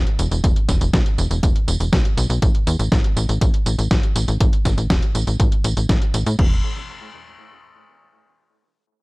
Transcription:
0.07 closed hi-hat soft
0.19 0.29 E1 medium
0.19 closed hi-hat medium
0.19 tambourine medium
0.31 0.41 E1 medium
0.31 closed hi-hat soft
0.31 tambourine soft
0.44 0.54 E1 loud
0.44 kick loud
0.44 closed hi-hat medium
0.44 tambourine soft
0.56 closed hi-hat soft
0.69 0.79 E1 medium
0.69 kick medium
0.69 snare soft
0.69 closed hi-hat medium
0.69 tambourine medium
0.81 0.91 E1 medium
0.81 closed hi-hat soft
0.81 tambourine soft
0.93 1.03 B1 loud
0.93 kick loud
0.93 snare loud
0.93 closed hi-hat medium
0.93 tambourine soft
1.06 closed hi-hat soft
1.18 1.28 E1 loud
1.18 closed hi-hat soft
1.18 tambourine medium
1.31 1.41 E1 medium
1.31 closed hi-hat soft
1.31 tambourine soft
1.43 1.53 E1 medium
1.43 kick loud
1.43 closed hi-hat medium
1.43 tambourine soft
1.56 closed hi-hat soft
1.68 1.78 E1 medium
1.68 closed hi-hat medium
1.68 tambourine medium
1.80 1.90 E1 medium
1.80 closed hi-hat soft
1.80 tambourine soft
1.93 2.02 B1 loud
1.93 kick loud
1.93 snare loud
1.93 closed hi-hat medium
1.93 tambourine soft
2.05 closed hi-hat soft
2.17 2.27 B1 medium
2.17 closed hi-hat medium
2.17 tambourine medium
2.30 2.40 B1 medium
2.30 closed hi-hat soft
2.30 tambourine soft
2.42 2.52 A1 loud
2.42 kick loud
2.42 closed hi-hat medium
2.42 tambourine soft
2.55 closed hi-hat soft
2.67 2.77 E2 medium
2.67 closed hi-hat medium
2.67 tambourine medium
2.79 2.89 A1 medium
2.79 closed hi-hat soft
2.79 tambourine soft
2.92 3.02 A1 loud
2.92 kick loud
2.92 snare loud
2.92 closed hi-hat medium
2.92 tambourine soft
3.04 closed hi-hat soft
3.17 3.26 A1 loud
3.17 closed hi-hat soft
3.17 tambourine medium
3.29 3.39 A1 medium
3.29 closed hi-hat soft
3.29 tambourine soft
3.41 3.51 A1 loud
3.41 kick loud
3.41 closed hi-hat medium
3.41 tambourine soft
3.54 closed hi-hat soft
3.66 3.76 A1 medium
3.66 closed hi-hat medium
3.66 tambourine medium
3.79 3.88 A1 medium
3.79 closed hi-hat soft
3.79 tambourine soft
3.91 4.01 A1 loud
3.91 kick loud
3.91 snare loud
3.91 closed hi-hat medium
3.91 tambourine soft
4.03 closed hi-hat soft
4.16 4.26 A1 medium
4.16 closed hi-hat medium
4.16 tambourine medium
4.28 4.38 A1 medium
4.28 closed hi-hat soft
4.28 tambourine soft
4.41 4.50 A1 loud
4.41 kick loud
4.41 closed hi-hat loud
4.41 tambourine soft
4.53 closed hi-hat soft
4.65 4.75 A1 medium
4.65 kick medium
4.65 snare soft
4.65 closed hi-hat medium
4.65 tambourine medium
4.78 4.88 A1 medium
4.78 closed hi-hat soft
4.78 tambourine soft
4.90 5.00 E1 loud
4.90 kick loud
4.90 snare loud
4.90 closed hi-hat medium
4.90 tambourine soft
5.03 closed hi-hat soft
5.15 5.25 A1 medium
5.15 closed hi-hat soft
5.15 tambourine medium
5.27 5.37 A1 medium
5.27 closed hi-hat soft
5.27 tambourine soft
5.40 5.50 A1 loud
5.40 kick loud
5.40 closed hi-hat medium
5.40 tambourine soft
5.52 closed hi-hat soft
5.64 5.74 A1 medium
5.64 closed hi-hat medium
5.64 tambourine medium
5.77 5.87 A1 medium
5.77 closed hi-hat soft
5.77 tambourine soft
5.89 5.99 A1 loud
5.89 kick loud
5.89 snare loud
5.89 closed hi-hat medium
5.89 tambourine soft
6.02 closed hi-hat soft
6.14 6.24 A1 medium
6.14 closed hi-hat medium
6.14 tambourine medium
6.26 6.36 A2 medium
6.26 closed hi-hat soft
6.26 tambourine soft
6.39 6.62 E1 loud
6.39 kick loud
6.39 crash medium

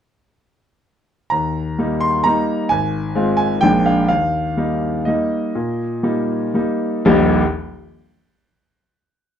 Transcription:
1.30 1.77 D#2 soft
1.30 2.02 A#5 medium
1.79 2.23 G3 soft
1.79 2.23 A#3 soft
1.79 2.23 D#4 soft
2.01 2.26 C6 medium
2.24 2.68 G3 soft
2.24 2.68 A#3 soft
2.24 2.68 D#4 soft
2.24 2.71 A#5 medium
2.69 3.14 G#1 medium
2.69 3.35 G#5 medium
3.15 3.59 G#3 soft
3.15 3.59 C4 soft
3.15 3.59 F4 medium
3.37 3.62 G#5 medium
3.61 4.09 A#1 medium
3.61 4.06 G#3 soft
3.61 4.07 A#3 soft
3.61 4.07 D4 soft
3.61 3.86 G5 medium
3.86 4.07 F5 medium
4.08 4.56 D#2 soft
4.08 5.07 F5 medium
4.57 5.03 G3 soft
4.57 5.03 A#3 soft
4.57 5.04 D#4 soft
5.05 5.52 G3 soft
5.05 5.52 A#3 soft
5.05 5.52 D#4 soft
5.05 6.53 D#5 medium
5.55 6.02 A#2 soft
6.03 6.50 G3 soft
6.03 6.50 A#3 soft
6.03 6.50 D#4 soft
6.54 7.01 G3 soft
6.54 7.01 A#3 soft
6.54 7.01 D#4 soft
7.05 7.32 D#1 medium
7.05 7.32 A#1 medium
7.05 7.32 G3 medium
7.05 7.33 A#3 medium
7.05 7.33 D#4 medium
7.05 7.33 G4 medium

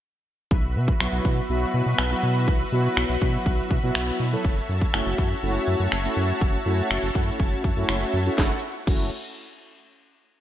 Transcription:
0.51 0.77 B1 loud
0.51 4.41 F#4 medium
0.51 4.41 B4 medium
0.51 8.34 E5 medium
0.51 4.41 B5 medium
0.51 kick loud
0.76 0.92 B2 loud
0.88 kick medium
1.00 1.08 B1 loud
1.00 1.42 F#3 medium
1.00 1.42 B3 medium
1.00 1.42 E4 medium
1.00 1.42 F#4 loud
1.00 finger snap loud
1.13 1.21 B1 loud
1.25 1.41 B2 loud
1.25 kick medium
1.49 1.65 B1 loud
1.49 2.02 F#3 medium
1.49 2.02 B3 medium
1.49 2.02 E4 medium
1.49 2.02 F#4 loud
1.74 1.82 B2 loud
1.86 1.94 B2 medium
1.99 2.15 B1 loud
1.99 finger snap loud
2.11 2.63 F#3 medium
2.11 2.63 B3 medium
2.11 2.63 E4 medium
2.11 2.63 F#4 medium
2.23 2.49 B2 medium
2.48 2.64 B1 loud
2.48 kick loud
2.72 2.88 B2 loud
2.72 3.14 F#3 medium
2.72 3.14 B3 medium
2.72 3.14 E4 medium
2.72 3.14 F#4 loud
2.97 3.05 B1 loud
2.97 finger snap loud
3.09 3.17 B1 loud
3.21 3.38 B2 loud
3.21 3.74 F#3 medium
3.21 3.74 B3 medium
3.21 3.74 E4 medium
3.21 3.74 F#4 medium
3.21 kick medium
3.46 3.62 B1 loud
3.46 kick medium
3.71 3.79 B2 loud
3.71 kick medium
3.83 3.91 B2 medium
3.83 4.25 F#3 loud
3.83 4.25 B3 medium
3.83 4.25 E4 medium
3.83 4.25 F#4 loud
3.95 4.11 B1 loud
3.95 finger snap loud
4.20 4.36 B2 medium
4.32 4.44 F#3 loud
4.32 4.45 B3 medium
4.32 4.45 E4 medium
4.32 4.45 A4 loud
4.45 4.61 F#1 loud
4.45 8.34 F#4 medium
4.45 8.34 C#5 medium
4.45 8.34 A5 medium
4.45 kick loud
4.69 4.85 F#2 medium
4.81 kick medium
4.94 5.02 F#1 loud
4.94 5.35 A3 medium
4.94 5.35 C#4 medium
4.94 5.36 E4 medium
4.94 5.36 F#4 loud
4.94 finger snap loud
5.06 5.14 F#1 loud
5.18 5.34 F#2 loud
5.18 kick medium
5.43 5.59 F#1 loud
5.43 5.95 A3 medium
5.43 5.95 C#4 medium
5.43 5.95 E4 medium
5.43 5.95 F#4 loud
5.68 5.76 F#2 loud
5.80 5.88 F#2 loud
5.92 6.08 F#1 loud
5.92 finger snap loud
6.04 6.57 A3 medium
6.04 6.57 C#4 medium
6.04 6.57 E4 medium
6.04 6.57 F#4 loud
6.17 6.33 F#2 medium
6.41 6.57 F#1 loud
6.41 kick loud
6.66 6.82 F#2 loud
6.66 7.08 A3 medium
6.66 7.08 C#4 medium
6.66 7.08 E4 medium
6.66 7.08 F#4 loud
6.91 6.99 F#1 medium
6.91 finger snap loud
7.03 7.11 F#1 loud
7.15 7.31 F#2 loud
7.15 7.67 A3 medium
7.15 7.67 C#4 medium
7.15 7.67 E4 medium
7.15 7.67 F#4 medium
7.15 kick medium
7.40 7.56 F#1 loud
7.40 kick medium
7.64 7.72 F#2 medium
7.64 kick medium
7.77 7.85 F#2 loud
7.77 8.18 A3 loud
7.77 8.18 C#4 medium
7.77 8.18 E4 medium
7.77 8.19 F#4 loud
7.89 8.05 F#1 loud
7.89 finger snap loud
8.14 8.30 F#2 loud
8.26 8.37 A3 medium
8.26 8.37 C#4 medium
8.26 8.37 E4 medium
8.26 8.37 F#4 loud
8.38 8.52 F#1 loud
8.38 8.52 A3 medium
8.38 8.52 C#4 medium
8.38 8.52 E4 medium
8.38 8.61 E4 medium
8.38 8.52 F#4 medium
8.38 8.61 F#4 medium
8.38 8.61 A4 medium
8.38 8.61 C#5 medium
8.38 8.61 F#5 medium
8.38 kick loud
8.38 snare medium
8.87 9.10 F#1 loud
8.87 9.10 A3 medium
8.87 9.10 C#4 medium
8.87 9.10 E4 medium
8.87 9.10 F#4 medium
8.87 kick loud
8.87 crash medium

